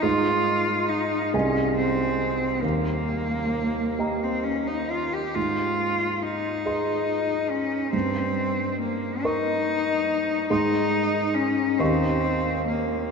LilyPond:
<<
  \new Staff \with { instrumentName = "Grand piano" } { \time 6/8 \key aes \major \tempo 4. = 46 <aes, aes' ees'' c'''>4. <c, aes' ees'' aes''>4. | ees,4. <g' ees'' bes''>4. | aes,4. <aes' ees'' c'''>4. | g,4. <bes' ees'' des'''>4. |
<aes, aes' ees'' c'''>4. <ees, g' ees'' des'''>4. | }
  \new Staff \with { instrumentName = "Cello" } { \time 6/8 \key aes \major f'4 ees'8 des'8 c'4 | bes4.~ bes16 c'16 des'16 ees'16 f'16 g'16 | f'4 ees'4. des'8 | c'4 bes8 ees'4. |
ees'4 des'8 c'4 bes8 | }
>>